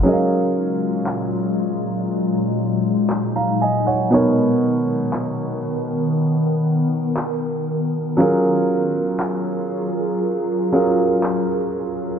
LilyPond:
<<
  \new Staff \with { instrumentName = "Grand piano" } { \time 4/4 \key fis \major \tempo 4 = 59 << { r2. r16 <eis'' ais''>16 <dis'' gis''>16 <cis'' fis''>16~ | <cis'' fis''>16 r2. r8. | r1 | } \\ { <fis cis' gis' ais' dis'' eis''>1 | <b, b dis' ais' cis''>1 | <fis cis' eis' gis' ais'>2~ <fis cis' eis' gis' ais'>8 <fis cis' eis' gis' ais'>4. | } >> }
  \new Staff \with { instrumentName = "Ambient pad" } { \time 4/4 \key fis \major << { eis'2 dis'2 | ais'2 ais'2 | ais'1 | } \\ { <ais, fis gis>1 | <dis b>1 | <fis eis' gis'>1 | } >> }
  \new DrumStaff \with { instrumentName = "Drums" } \drummode { \time 4/4 r4 hc4 r4 hc4 | r4 hc4 r4 hc4 | r4 hc4 r4 hc4 | }
>>